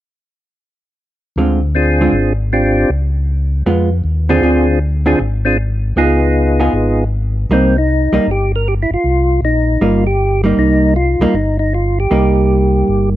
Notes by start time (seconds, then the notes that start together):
1.36 D2 D3 G#3 C4 F4
1.75 C4 D4 F4 G#4
2.01 D3 G#3 C4 F4
2.12 G#1
2.53 C4 D4 F4 G4
2.90 C#2
3.66 F2 G#3 B3 F4
4.04 D#2
4.29 D3 C4 D4 F4 G#4
4.42 D2 D3 C4 F4 G#4
5.06 D3 C4 D4 F4 G#4
5.19 G#1
5.45 C4 D4 F4 G#4
5.96 C#2 B3 D#4 F4 G#4
6.60 B3 F4 G#4
6.73 G#1
7.49 C2 G3 A#3 C4 D#4
7.78 D#4
8.12 C2 G3 A#3 D#4
8.26 G1
8.31 G4
8.56 A#4
8.68 G4
8.83 E4
8.90 G1 F4
9.04 C2
9.42 A#1 D#4
9.81 G1 G3 A#3 D#4 F4
10.07 G4
10.44 G3 A#3 D#4
10.57 C2 D#4
10.96 F4
11.19 C2 G3 A#3 D#4
11.34 G1 D#4
11.59 D#4
11.74 F4
12.00 G4
12.10 C2 G3 A#3 D#4
12.88 G1